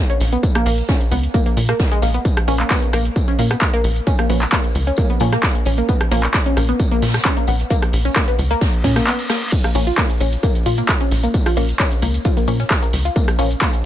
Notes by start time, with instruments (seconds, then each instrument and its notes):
0.10 synth arpeggio sound C#4, closed hi-hat
0.20 analog synth bass A#1, snare, open hi-hat, tambourine
0.32 synth arpeggio sound B3, closed hi-hat
0.43 kick, closed hi-hat, tambourine
0.55 synth arpeggio sound A#3, cross-stick, closed hi-hat
0.66 analog synth bass A#1, synth arpeggio sound A#3, open hi-hat
0.78 closed hi-hat
0.89 synth arpeggio sound C#4, kick, snare, closed hi-hat, tambourine
1.01 closed hi-hat
1.11 analog synth bass C#2, synth arpeggio sound B3, open hi-hat, tambourine
1.23 closed hi-hat
1.34 synth arpeggio sound A#3, kick, closed hi-hat, tambourine
1.46 synth arpeggio sound A#3, closed hi-hat
1.57 analog synth bass A#2, open hi-hat, tambourine
1.69 synth arpeggio sound A#3, cross-stick, snare, closed hi-hat
1.79 kick, snare, closed hi-hat, tambourine
1.91 synth arpeggio sound G#3, closed hi-hat
2.02 analog synth bass A#1, synth arpeggio sound A#3, snare, open hi-hat, tambourine
2.14 synth arpeggio sound B3, closed hi-hat
2.25 kick, closed hi-hat, tambourine
2.37 cross-stick, closed hi-hat
2.48 analog synth bass A#1, synth stab F3 A#3 C#4, synth arpeggio sound C#4, open hi-hat, tambourine
2.60 synth arpeggio sound A#3, clap, closed hi-hat
2.70 synth arpeggio sound B3, kick, snare, clap, closed hi-hat, tambourine
2.82 closed hi-hat
2.93 analog synth bass A#1, synth arpeggio sound A#3, cross-stick, open hi-hat, tambourine
3.05 closed hi-hat
3.16 kick, closed hi-hat, tambourine
3.28 synth arpeggio sound C#4, closed hi-hat
3.39 analog synth bass A#2, synth arpeggio sound A#3, open hi-hat, tambourine
3.50 synth arpeggio sound B3, cross-stick, closed hi-hat
3.61 kick, snare, clap, closed hi-hat, tambourine
3.73 synth arpeggio sound A#3, closed hi-hat
3.84 analog synth bass A#1, open hi-hat, tambourine
3.96 closed hi-hat
4.07 synth arpeggio sound C#4, kick, closed hi-hat, tambourine
4.19 synth arpeggio sound A#3, cross-stick, closed hi-hat
4.30 analog synth bass A#1, synth stab F3 A#3 C#4, synth arpeggio sound B3, open hi-hat
4.42 clap, closed hi-hat
4.52 synth arpeggio sound A#3, kick, snare, clap, closed hi-hat, tambourine
4.64 closed hi-hat
4.75 analog synth bass C#2, open hi-hat, tambourine
4.87 synth arpeggio sound C#4, closed hi-hat
4.96 synth arpeggio sound A#3, kick, closed hi-hat, tambourine
5.10 synth arpeggio sound B3, closed hi-hat
5.20 analog synth bass A#2, synth stab F3 A#3 C#4, open hi-hat, tambourine
5.32 synth arpeggio sound A#3, cross-stick, snare, closed hi-hat
5.43 kick, snare, clap, closed hi-hat, tambourine
5.55 closed hi-hat
5.65 analog synth bass A#1, synth arpeggio sound C#4, open hi-hat, tambourine
5.78 synth arpeggio sound A#3, closed hi-hat
5.89 synth arpeggio sound B3, kick, closed hi-hat, tambourine
6.01 cross-stick, closed hi-hat
6.11 analog synth bass A#1, synth stab F3 A#3 C#4, synth arpeggio sound A#3, open hi-hat, tambourine
6.23 clap, closed hi-hat
6.34 kick, snare, clap, closed hi-hat, tambourine
6.46 synth arpeggio sound C#4, closed hi-hat
6.57 analog synth bass A#1, synth arpeggio sound A#3, cross-stick, open hi-hat, tambourine
6.69 synth arpeggio sound B3, closed hi-hat
6.80 kick, closed hi-hat, tambourine
6.92 synth arpeggio sound A#3, closed hi-hat
7.02 analog synth bass A#2, snare, open hi-hat, tambourine
7.08 snare, tambourine
7.13 cross-stick, snare, closed hi-hat, tambourine
7.20 snare, tambourine
7.25 synth arpeggio sound C#4, kick, snare, clap, closed hi-hat, tambourine
7.37 synth arpeggio sound A#3, closed hi-hat
7.47 analog synth bass A#1, synth arpeggio sound B3, open hi-hat, tambourine
7.60 closed hi-hat
7.70 synth arpeggio sound A#3, kick, closed hi-hat, tambourine
7.82 cross-stick, closed hi-hat
7.93 analog synth bass A#1, open hi-hat
8.05 synth arpeggio sound C#4, closed hi-hat
8.16 synth arpeggio sound A#3, kick, snare, clap, closed hi-hat, tambourine
8.28 synth arpeggio sound B3, closed hi-hat
8.39 analog synth bass C#2, open hi-hat, tambourine
8.51 synth arpeggio sound A#3, closed hi-hat
8.61 kick, snare, closed hi-hat, tambourine, reverse cymbal
8.73 closed hi-hat
8.84 analog synth bass A#2, synth arpeggio sound C#4, kick, snare, open hi-hat, tambourine
8.95 synth arpeggio sound A#3, cross-stick, snare, closed hi-hat, tambourine
9.07 synth arpeggio sound B3, clap, closed hi-hat
9.19 snare, closed hi-hat, tambourine
9.30 synth arpeggio sound A#3, cross-stick, snare, open hi-hat, tambourine
9.42 closed hi-hat
9.52 kick, closed hi-hat, ride, tambourine, crash, shaker
9.64 synth arpeggio sound A#3, cross-stick, closed hi-hat, shaker
9.75 analog synth bass A#1, synth stab F3 A#3 C#4, open hi-hat, ride, tambourine
9.87 synth arpeggio sound F4, closed hi-hat, shaker
9.98 synth arpeggio sound A#3, kick, snare, clap, closed hi-hat, ride, tambourine, shaker
10.10 closed hi-hat, shaker
10.20 analog synth bass A#1, synth arpeggio sound C#4, open hi-hat, ride, tambourine
10.32 closed hi-hat, shaker
10.43 synth arpeggio sound A#3, kick, closed hi-hat, ride, tambourine, shaker
10.55 closed hi-hat, shaker
10.66 analog synth bass A#2, synth arpeggio sound F4, open hi-hat, ride, tambourine
10.77 synth arpeggio sound A#3, closed hi-hat, shaker
10.88 kick, cross-stick, snare, clap, closed hi-hat, ride, tambourine, shaker
11.01 synth arpeggio sound C#4, closed hi-hat, shaker
11.11 analog synth bass A#1, snare, open hi-hat, ride, tambourine
11.23 synth arpeggio sound A#3, closed hi-hat, shaker
11.34 kick, closed hi-hat, ride, tambourine, shaker
11.46 synth arpeggio sound F4, cross-stick, open hi-hat, shaker
11.57 analog synth bass A#1, synth stab F3 A#3 C#4, synth arpeggio sound A#3, open hi-hat, ride
11.69 closed hi-hat, shaker
11.79 synth arpeggio sound C#4, kick, snare, clap, closed hi-hat, ride, tambourine, shaker
11.92 closed hi-hat, shaker
12.02 analog synth bass C#2, synth arpeggio sound A#3, open hi-hat, ride, tambourine
12.14 closed hi-hat, shaker
12.25 synth arpeggio sound F4, kick, closed hi-hat, ride, tambourine, shaker
12.37 synth arpeggio sound A#3, closed hi-hat, shaker
12.48 analog synth bass A#2, synth stab F3 A#3 C#4, open hi-hat, ride, tambourine
12.59 synth arpeggio sound C#4, snare, closed hi-hat, shaker
12.70 kick, cross-stick, snare, clap, closed hi-hat, ride, tambourine, shaker
12.82 synth arpeggio sound A#3, closed hi-hat, shaker
12.93 analog synth bass C#2, snare, open hi-hat, ride, tambourine
13.05 synth arpeggio sound F4, closed hi-hat, shaker
13.16 synth arpeggio sound A#3, kick, closed hi-hat, ride, tambourine, shaker
13.28 cross-stick, closed hi-hat, shaker
13.39 analog synth bass A#1, synth stab F3 A#3 C#4, synth arpeggio sound C#4, open hi-hat, ride, tambourine
13.51 closed hi-hat, shaker
13.61 synth arpeggio sound A#3, kick, snare, clap, closed hi-hat, ride, tambourine, shaker
13.73 closed hi-hat, shaker